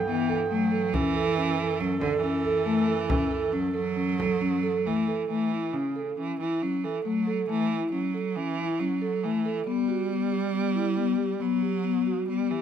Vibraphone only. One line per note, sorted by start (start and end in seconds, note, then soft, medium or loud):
0.07 0.21 B3 medium
0.29 0.42 A4 medium
0.51 0.64 A3 medium
0.71 0.85 A4 medium
0.94 1.07 C#4 medium
1.16 1.29 A4 medium
1.37 1.51 C#4 medium
1.59 1.72 A4 medium
1.80 1.94 C#4 medium
2.02 2.15 A4 medium
2.23 2.37 C#4 medium
2.44 2.58 A4 medium
2.66 2.80 A3 medium
2.88 3.01 A4 medium
3.10 3.23 C#4 medium
3.31 3.45 A4 medium
3.52 3.66 C#4 medium
3.74 3.88 A4 medium
3.96 4.10 C#4 medium
4.19 4.33 A4 medium
4.41 4.55 C#4 medium
4.63 4.77 A4 medium
4.86 5.00 A3 medium
5.08 5.22 A4 medium
5.30 5.44 A3 medium
5.52 5.66 E4 medium
5.74 5.88 C#4 medium
5.96 6.10 A4 medium
6.17 6.31 C#4 medium
6.40 6.54 E4 medium
6.62 6.76 C#4 medium
6.84 6.98 A4 medium
7.05 7.19 A3 medium
7.27 7.41 A4 medium
7.49 7.63 A3 medium
7.70 7.84 E4 medium
7.92 8.06 C#4 medium
8.14 8.28 A4 medium
8.37 8.50 C#4 medium
8.59 8.72 E4 medium
8.80 8.94 C#4 medium
9.02 9.15 A4 medium
9.24 9.37 A3 medium
9.45 9.59 A4 medium
9.67 9.80 B3 medium
9.88 10.02 F#4 medium
10.09 10.23 B3 medium
10.32 10.45 G4 medium
10.54 10.67 B3 medium
10.75 10.89 E4 medium
10.96 11.10 B3 medium
11.18 11.32 G4 medium
11.40 11.54 B3 medium
11.62 11.76 G4 medium
11.84 11.98 B3 medium
12.07 12.20 F#4 medium
12.28 12.42 B3 medium
12.50 12.62 G4 medium